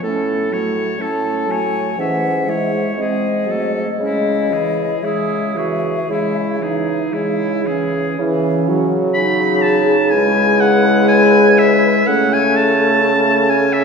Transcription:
0.02 bassoon A2, french horn A3, clarinet C#4, oboe A4
0.51 french horn F#3, clarinet A3, oboe C#5
0.99 bassoon A2, french horn A3, clarinet C#4, oboe A4, flute A5
1.48 french horn F#3, clarinet A3, oboe C#5, flute G#5
1.98 bassoon G#2, french horn E3, clarinet C#4, oboe E5, flute F#5
2.46 french horn G#3, clarinet E4, oboe C#5, flute E5
2.96 bassoon G#2, french horn G#3, clarinet C4, flute D#5
3.01 oboe G#4
3.46 french horn F#3, clarinet A3
3.51 oboe A4
3.99 bassoon C#3, french horn G#3, clarinet C#4, oboe E4, flute D#5
4.52 french horn E3, clarinet E4, oboe G#4
5.03 bassoon C#3, french horn G#3, oboe E4, clarinet G#4, flute E5
5.56 french horn E3, clarinet F#4, oboe G#4
6.09 bassoon C#3, french horn G#3, clarinet E4, oboe E4
6.60 french horn E3, clarinet D#4, oboe G#4
7.13 bassoon C#3, french horn G#3, oboe E4, clarinet E4
7.66 french horn E3, clarinet C#4, oboe G#4
8.19 bassoon C#3, french horn E3, clarinet C#4, flute G#4
8.68 french horn F#3
9.14 clarinet D#4, flute G#4, oboe B5
9.62 oboe A5
10.11 french horn G#3, clarinet E4, flute B4, oboe G#5
10.60 oboe F#5
11.08 oboe G#5
11.58 oboe E5
12.07 bassoon C#3, french horn A3, clarinet C#4, flute A4, oboe F#5
12.34 oboe G#5
12.56 oboe A5
13.03 clarinet C#4
13.50 oboe G#5
13.73 oboe E5

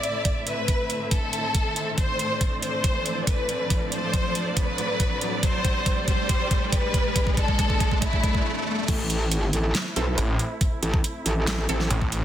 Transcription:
Already playing: string section A2 A3 C4 E4 E5, violin section D5, riser
0.03 closed hi-hat
0.25 kick, closed hi-hat
0.47 violin section B4, closed hi-hat
0.68 kick, closed hi-hat
0.90 closed hi-hat
1.11 violin section A4, kick, closed hi-hat
1.33 closed hi-hat
1.55 kick, closed hi-hat
1.76 closed hi-hat
1.98 string section D4 D5, violin section C5, kick, closed hi-hat
2.19 closed hi-hat
2.41 kick, closed hi-hat
2.62 violin section C5, closed hi-hat
2.84 kick, closed hi-hat
3.06 closed hi-hat
3.27 violin section B4, kick, closed hi-hat
3.49 closed hi-hat
3.70 kick, closed hi-hat
3.92 violin section C5, closed hi-hat
4.13 kick, closed hi-hat
4.35 closed hi-hat
4.57 violin section B4, kick, closed hi-hat
4.78 closed hi-hat
5.00 kick, closed hi-hat
5.21 closed hi-hat
5.43 violin section C5, kick, closed hi-hat
5.65 kick, closed hi-hat
5.86 kick, closed hi-hat
6.08 violin section C5, kick, closed hi-hat
6.29 kick, closed hi-hat
6.51 kick, closed hi-hat
6.72 violin section B4, kick, closed hi-hat
6.94 kick, closed hi-hat
7.16 kick, closed hi-hat
7.27 kick
7.37 violin section A4, kick, closed hi-hat
7.48 kick
7.59 kick, closed hi-hat
7.70 kick
7.80 kick, closed hi-hat
7.91 kick
8.02 violin section E4, kick, closed hi-hat
8.13 kick
8.23 kick, closed hi-hat
8.35 kick
8.88 wobble bass A1, string section A3 C4 E4, kick, closed hi-hat, crash
9.10 closed hi-hat
9.31 wobble bass G#1, closed hi-hat
9.53 wobble bass A1, closed hi-hat
9.75 snare, closed hi-hat
9.96 wobble bass B1, synth stab C4 E4 A4, closed hi-hat
10.18 detuned saw bass A1, closed hi-hat
10.39 closed hi-hat
10.61 kick, closed hi-hat
10.83 wobble bass A1, closed hi-hat
10.94 kick
11.04 closed hi-hat
11.26 wobble bass A1, closed hi-hat
11.47 snare, closed hi-hat
11.69 wobble bass A1, synth stab C4 E4 A4, closed hi-hat
11.80 snare
11.90 detuned saw bass A1, closed hi-hat
12.02 kick
12.12 detuned saw bass A1, closed hi-hat

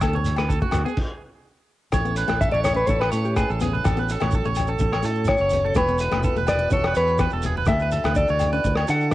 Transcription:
0.01 fingered electric bass D2, steel-string acoustic guitar A3, clean electric guitar A4, kick, cross-stick, low agogo, shekere
0.13 steel-string acoustic guitar B3, clean electric guitar C#5, high conga
0.24 closed hi-hat, high conga, shekere
0.36 steel-string acoustic guitar A3, clean electric guitar B4, cross-stick, low agogo, shekere
0.49 clean electric guitar A4, kick, shekere
0.62 steel-string acoustic guitar A3, clean electric guitar F#4, kick
0.71 fingered electric bass D2, cross-stick, closed hi-hat, low conga, low agogo, shekere
0.85 steel-string acoustic guitar B3, clean electric guitar G#4, shekere
0.97 kick, crash
1.92 fingered electric bass A1, steel-string acoustic guitar A3, tonewheel organ C#4 E4 A4, clean electric guitar C#5, kick, cross-stick, low conga, low agogo, shekere
2.05 steel-string acoustic guitar B3, shekere
2.16 clean electric guitar B4, closed hi-hat, shekere
2.28 fingered electric bass A1, steel-string acoustic guitar A3, cross-stick, high conga, low agogo, shekere
2.41 clean electric guitar A4 E5, kick, shekere
2.51 fingered electric bass A1, steel-string acoustic guitar A3, clean electric guitar C#5 D5, high conga, shekere
2.64 clean electric guitar C#5, cross-stick, closed hi-hat, high conga, low conga, low agogo, shekere
2.74 steel-string acoustic guitar C#4, clean electric guitar B4, shekere
2.87 fingered electric bass A1, steel-string acoustic guitar A3, clean electric guitar A4 C#5, kick, shekere
3.00 clean electric guitar B4, cross-stick, low agogo
3.12 fingered electric bass A2, steel-string acoustic guitar A3, clean electric guitar A4 C#5, closed hi-hat, shekere
3.24 clean electric guitar G4, shekere
3.36 steel-string acoustic guitar A3, clean electric guitar G#4 B4, kick, cross-stick, low agogo, shekere
3.50 fingered electric bass A1, clean electric guitar A4, shekere
3.60 steel-string acoustic guitar B3, clean electric guitar G#4, closed hi-hat, high conga, low conga, shekere
3.73 clean electric guitar B4, high conga
3.84 fingered electric bass A1, steel-string acoustic guitar A3, tonewheel organ F#4, clean electric guitar A4, kick, cross-stick, low conga, low agogo, shekere
3.97 steel-string acoustic guitar B3, clean electric guitar B4, shekere
4.09 clean electric guitar A4, closed hi-hat, shekere
4.20 fingered electric bass A1, steel-string acoustic guitar A3, clean electric guitar C#5, cross-stick, high conga, low agogo, shekere
4.31 clean electric guitar A4, kick, shekere
4.44 fingered electric bass A1, steel-string acoustic guitar A3, clean electric guitar C#5, high conga, shekere
4.55 closed hi-hat, low agogo, shekere
4.59 high conga, low conga
4.67 steel-string acoustic guitar C#4, clean electric guitar A4, shekere
4.79 fingered electric bass A1, steel-string acoustic guitar A3, kick, shekere
4.92 clean electric guitar C#5, cross-stick, low agogo
5.03 fingered electric bass A2, steel-string acoustic guitar A3, clean electric guitar A4, closed hi-hat, shekere
5.15 shekere
5.25 steel-string acoustic guitar A3, clean electric guitar C#5, cross-stick, low agogo, shekere
5.29 kick
5.37 fingered electric bass F#1, shekere
5.41 clean electric guitar C#5
5.50 steel-string acoustic guitar B3, closed hi-hat, high conga, low conga, shekere
5.65 clean electric guitar A4, high conga
5.75 fingered electric bass E1, steel-string acoustic guitar A3, tonewheel organ B3 E4 F#4, clean electric guitar B4 C#5, kick, cross-stick, low conga, low agogo, shekere
5.88 steel-string acoustic guitar B3, shekere
5.98 clean electric guitar B4, closed hi-hat, shekere
6.12 fingered electric bass E1, steel-string acoustic guitar A3, cross-stick, high conga, low agogo
6.23 clean electric guitar A4, kick, shekere
6.36 fingered electric bass E1, steel-string acoustic guitar A3, clean electric guitar B4, high conga, shekere
6.47 clean electric guitar B4 D5, cross-stick, closed hi-hat, high conga, low conga, low agogo, shekere
6.59 muted steel-string acoustic guitar stroke, shekere
6.71 fingered electric bass E1, steel-string acoustic guitar B3, clean electric guitar A4 C#5, kick, shekere
6.84 clean electric guitar B4, cross-stick, low agogo
6.95 fingered electric bass E2, steel-string acoustic guitar B3, clean electric guitar B4 C#5, closed hi-hat, shekere
7.08 shekere
7.18 steel-string acoustic guitar B3, clean electric guitar B4, kick, cross-stick, low agogo, shekere
7.30 fingered electric bass E1, clean electric guitar A4, shekere
7.42 clean electric guitar G#4, closed hi-hat, high conga, low conga, shekere
7.57 clean electric guitar B4, high conga
7.66 fingered electric bass D2, steel-string acoustic guitar A3, tonewheel organ D4, clean electric guitar A4 E5, kick, cross-stick, low conga, low agogo, shekere
7.79 steel-string acoustic guitar B3, clean electric guitar B4, shekere
7.91 clean electric guitar A4, closed hi-hat, low conga, shekere
8.04 fingered electric bass D2, steel-string acoustic guitar A3, clean electric guitar B4, cross-stick, high conga, low agogo, shekere
8.15 clean electric guitar A4 D5, kick, shekere
8.27 fingered electric bass D2, steel-string acoustic guitar A3, clean electric guitar C#5, high conga, shekere
8.39 closed hi-hat, high conga, low conga, low agogo, shekere
8.53 steel-string acoustic guitar C#4, clean electric guitar B4, shekere
8.64 fingered electric bass D2, muted steel-string acoustic guitar stroke, kick, shekere
8.76 clean electric guitar C#5, cross-stick, low agogo
8.87 fingered electric bass D3, steel-string acoustic guitar A3, clean electric guitar A4 F#5, closed hi-hat, shekere
9.01 shekere

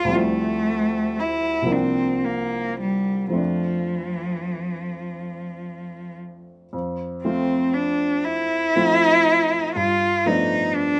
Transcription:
Already playing: grand piano C#2 G3 A3 C4 D4, cello F4
0.05 grand piano D2 F3
0.09 grand piano G3 C4
0.13 cello A3, grand piano E4
1.20 cello E4
1.62 grand piano C2 F3 A#3
1.68 grand piano C4 D4
1.72 cello C4
2.25 cello A#3
2.81 cello G3
3.28 grand piano F2 F3
3.32 grand piano A3 C4 D4
3.37 cello F3
6.73 grand piano F2
7.23 grand piano F3 A3 C4 F4, cello C4
7.74 cello D4
8.24 cello E4
8.76 grand piano F3 A3 C4 F4
9.76 grand piano G2, cello F4
10.26 grand piano F3 A3 B3 D4, cello D#4
10.76 cello D4

